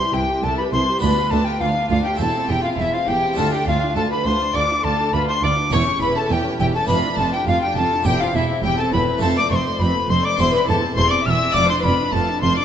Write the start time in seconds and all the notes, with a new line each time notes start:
Already playing: C2 C4 E4 G4 C5 C6
0.00 G4
0.13 C2 E4 G4 G5
0.28 G4
0.42 C2 E4 A4 A5
0.58 G4 B4 B5
0.71 C2 E4 C5 C6
0.89 G4
0.99 D2 B3 D4 F4 B4 B5
1.03 D2
1.17 F4
1.31 D2 D4 A4 A5
1.45 F4 G4 G5
1.60 D2 D4 F4 F5
1.75 F4
1.88 D2 D4 F4 F5
2.04 F4 G4 G5
2.15 C4 E4 A4
2.19 E1 E2 E4 A5
2.35 C4
2.48 E1 E2 E4 G4 G5
2.62 C4 F4 F5
2.77 E1 E2 E4 E5
2.92 C4 F4 F5
3.07 E1 E2 E4 G4 G5
3.23 C4
3.33 D2 A3 D4 F4 A4
3.38 D2 F4 A5
3.52 D4 G4 G5
3.66 D2 F4 F5
3.82 D4
3.95 D2 F4 A4 A5
4.10 D4 B4 B5
4.24 D2 F4 C5 C6
4.41 D4
4.53 D2 F4 D5 D6
4.71 D4
4.83 D2 F4 A4 A5
4.99 D4
5.13 D2 F4 B4 B5
5.28 D4 C5 C6
5.42 D2 F4 D5 D6
5.57 D4
5.70 E1 E2 C#4 E4 G4 C#5 C#6
5.86 C#4
6.00 E1 E2 E4 B4 B5
6.15 C#4 A4 A5
6.30 E1 E2 E4 G4 G5
6.44 C#4
6.59 E1 E2 E4 G4 G5
6.74 C#4 A4 A5
6.85 F1 A3 D4 F4 B4 B5
6.89 F2 F4 B5
7.04 D4
7.18 F1 F2 F4 A4 A5
7.33 D4 G4 G5
7.46 F1 F2 F4 F5
7.62 D4 G4 G5
7.75 F1 F2 F4 A4 A5
7.92 D4
8.03 E1 E2 C4 G4 G5
8.07 E4
8.20 C4 F4 F5
8.34 E1 E2 E4 E5
8.50 C4
8.63 E1 E2 E4 G4 G5
8.77 C4 A4 A5
8.92 E1 E2 E4 B4 B5
9.07 C4
9.18 F1 F2 A3 C4 F4 A4 A5
9.23 F2 C4
9.36 A3 D5 D6
9.50 F1 F2 C4 C5 C6 C#6
9.56 C6
9.66 A3
9.79 F1 F2 C4 B4 B5
9.96 A3
10.09 F1 F2 C4 C5 C6
10.24 A3 D5 D6
10.37 E1 E2 C4 E4 G4 C5 C6
10.53 C4 B4 B5
10.67 E1 E2 E4 A4 A5
10.82 C4
10.95 E1 E2 E4 C5 C6
11.10 C4 D5 D6
11.25 E1 E2 E4 E5 E6 F6
11.30 E6
11.40 C4
11.51 F1 A3 D4 F4 D5 D6
11.56 F2
11.67 D4 C5 C6
11.82 F1 F2 F4 B4 B5
11.98 D4
12.12 F1 F2 F4 A4 A5
12.28 D4
12.41 F1 F2 F4 C5 C6
12.56 D4 D5 D6